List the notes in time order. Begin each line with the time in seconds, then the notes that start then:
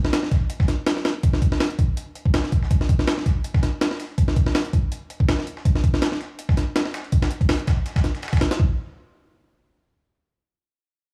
0.05 snare
0.13 snare, closed hi-hat
0.23 snare
0.31 kick, snare, closed hi-hat
0.50 closed hi-hat
0.60 kick, snare
0.68 snare, closed hi-hat
0.87 snare, closed hi-hat
0.97 snare
1.05 snare, closed hi-hat, open hi-hat
1.23 kick, closed hi-hat
1.33 snare
1.42 kick, closed hi-hat
1.52 snare
1.60 snare, closed hi-hat, open hi-hat
1.70 closed hi-hat
1.79 kick, closed hi-hat
1.97 closed hi-hat
2.15 closed hi-hat
2.25 kick
2.34 snare, closed hi-hat
2.44 snare, closed hi-hat
2.52 kick, closed hi-hat
2.63 snare
2.71 kick, closed hi-hat
2.81 snare, closed hi-hat
2.89 kick, closed hi-hat
2.99 snare
3.08 snare, closed hi-hat
3.18 snare
3.26 kick, snare, closed hi-hat
3.44 closed hi-hat
3.54 kick, snare
3.63 snare, closed hi-hat
3.81 snare, closed hi-hat
3.91 snare
4.00 snare, closed hi-hat, open hi-hat
4.18 kick, closed hi-hat
4.28 snare
4.36 kick, closed hi-hat
4.46 snare
4.55 snare, closed hi-hat, open hi-hat
4.65 closed hi-hat
4.73 kick, closed hi-hat
4.92 closed hi-hat
5.10 closed hi-hat
5.20 kick
5.29 snare, closed hi-hat
5.39 snare
5.47 closed hi-hat
5.57 snare
5.65 kick, closed hi-hat
5.75 snare, closed hi-hat
5.84 kick, closed hi-hat
5.94 snare
6.02 snare, closed hi-hat
6.12 snare
6.21 snare, closed hi-hat
6.39 closed hi-hat
6.49 kick, snare
6.57 snare, closed hi-hat
6.76 snare, closed hi-hat
6.86 snare
6.94 snare, closed hi-hat
7.04 closed hi-hat
7.12 kick, closed hi-hat
7.22 snare, closed hi-hat
7.31 closed hi-hat
7.41 kick, closed hi-hat
7.49 snare, closed hi-hat, open hi-hat
7.59 closed hi-hat
7.67 kick, snare, closed hi-hat
7.86 snare, closed hi-hat
7.96 kick, snare, closed hi-hat
8.04 snare, closed hi-hat
8.15 snare, closed hi-hat
8.23 snare, closed hi-hat
8.28 snare, closed hi-hat
8.33 kick, snare, closed hi-hat
8.37 snare, closed hi-hat
8.41 snare, closed hi-hat
8.51 snare, closed hi-hat
8.60 kick